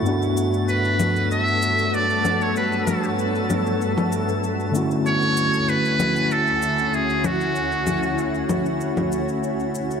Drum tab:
SH |xxxxxxxxxxxxxxxx|xxxxxxxxxxxxxxxx|xxxxxxxxxxxxxxxx|xxxxxxxxxxxxxxxx|
CG |------O-------O-|--O---O--O------|------O-------O-|--O---O--O------|